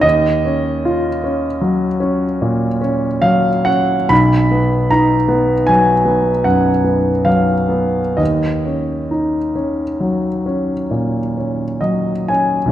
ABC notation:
X:1
M:5/4
L:1/8
Q:1/4=72
K:Ebm
V:1 name="Grand piano"
e6- e z f g | =b2 ^a2 _a2 ^f2 =f2 | e8 e a |]
V:2 name="Grand piano"
E,, D F D G, D B,, D G, D | =B,,, =B, ^D B, ^F, B, ^F,, B, F, B, | E,, D E D G, D B,, D G, D |]